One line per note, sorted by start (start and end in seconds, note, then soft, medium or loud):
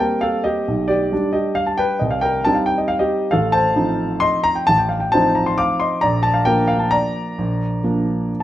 0.00 0.64 G3 soft
0.00 0.64 A#3 soft
0.00 0.65 C4 soft
0.00 0.21 A#4 medium
0.00 0.22 G5 medium
0.21 0.44 A4 medium
0.21 0.44 F5 medium
0.44 0.86 G4 medium
0.44 0.89 D#5 medium
0.68 1.10 B1 soft
0.88 1.31 G4 medium
0.88 1.33 D5 medium
1.12 1.97 G3 soft
1.12 1.97 D4 soft
1.33 1.55 G4 medium
1.33 1.56 D#5 medium
1.55 1.67 F5 medium
1.67 1.78 A5 medium
1.78 1.99 B4 medium
1.78 2.00 G5 medium
1.99 2.43 C2 medium
1.99 2.11 D#5 medium
2.11 2.22 F5 medium
2.21 2.43 A#4 medium
2.21 2.44 G5 medium
2.45 3.29 G3 soft
2.45 3.29 C4 soft
2.45 3.29 D#4 soft
2.45 2.56 A5 medium
2.54 2.66 F5 medium
2.66 2.77 G5 medium
2.78 2.89 D#5 medium
2.88 2.99 F5 medium
2.99 3.30 G4 medium
2.99 3.32 D#5 medium
3.31 3.75 A1 soft
3.31 3.52 A4 medium
3.31 3.53 F5 medium
3.52 4.18 C5 medium
3.52 4.21 A5 medium
3.76 4.64 F3 soft
3.76 4.64 C4 soft
3.76 4.64 D#4 soft
4.20 4.43 D#5 medium
4.20 4.44 C6 medium
4.44 4.56 A#5 medium
4.55 4.67 G5 medium
4.67 5.12 A1 medium
4.67 4.78 A5 loud
4.78 4.89 G5 medium
4.89 5.01 F5 medium
5.00 5.12 G5 medium
5.12 5.99 F3 soft
5.12 5.99 C4 soft
5.12 6.00 D#4 soft
5.12 5.35 C5 medium
5.12 5.35 A5 medium
5.35 5.47 A#5 medium
5.46 5.58 C6 medium
5.58 5.79 F5 medium
5.58 5.80 D6 medium
5.80 6.01 D#5 medium
5.80 6.02 C6 medium
6.01 6.45 A#1 medium
6.01 6.22 D5 medium
6.01 6.23 A#5 medium
6.23 6.34 A5 medium
6.34 6.46 F5 medium
6.45 7.35 F3 soft
6.45 7.35 A#3 soft
6.45 7.35 D4 soft
6.45 6.68 A#4 medium
6.45 6.69 G5 medium
6.68 6.80 F5 medium
6.79 6.92 A5 medium
6.91 8.37 D5 medium
6.91 8.41 A#5 medium
7.38 7.82 A#1 soft
7.84 8.43 F3 soft
7.84 8.43 A#3 soft
7.84 8.43 D4 soft